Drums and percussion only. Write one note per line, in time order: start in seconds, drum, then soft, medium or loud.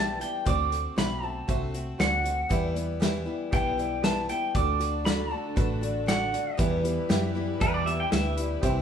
0.21 closed hi-hat medium
0.46 kick loud
0.46 closed hi-hat medium
0.72 closed hi-hat medium
0.98 snare loud
0.98 closed hi-hat medium
1.49 kick loud
1.49 closed hi-hat medium
1.74 closed hi-hat medium
2.00 snare loud
2.00 closed hi-hat medium
2.25 closed hi-hat medium
2.51 kick loud
2.51 closed hi-hat medium
2.76 closed hi-hat medium
3.02 snare loud
3.02 closed hi-hat medium
3.53 kick loud
3.53 closed hi-hat medium
3.79 closed hi-hat medium
4.04 snare loud
4.04 closed hi-hat medium
4.29 closed hi-hat medium
4.55 kick loud
4.55 closed hi-hat medium
4.81 closed hi-hat medium
5.06 snare loud
5.06 closed hi-hat medium
5.57 kick loud
5.57 closed hi-hat medium
5.83 closed hi-hat medium
6.08 snare loud
6.08 closed hi-hat medium
6.34 closed hi-hat medium
6.59 kick loud
6.59 closed hi-hat medium
6.85 closed hi-hat medium
7.10 snare loud
7.10 closed hi-hat medium
7.61 kick loud
7.61 closed hi-hat medium
7.87 closed hi-hat medium
8.12 snare loud
8.12 closed hi-hat medium
8.37 closed hi-hat medium
8.63 kick loud
8.63 closed hi-hat medium